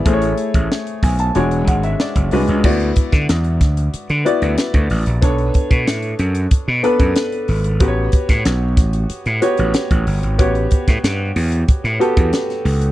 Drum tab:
CC |----------------|x---------------|----------------|----------------|
HH |xxxx-xoxxxxx-xox|-xxxxxxxxxxxxxox|xxxxxxxxx-xxxxox|x-xxx-xxxxxxxxox|
SD |----o-------o---|---oo-o-----o---|----o-------o---|---oo-o-----o---|
BD |o--o--o---o--o--|o-oo--o------o--|o-oo----o--o----|o-oo--o------o--|

CC |----------------|
HH |xxxxx-oxxxxxxxox|
SD |---oo-------oo--|
BD |o-oo----o--o----|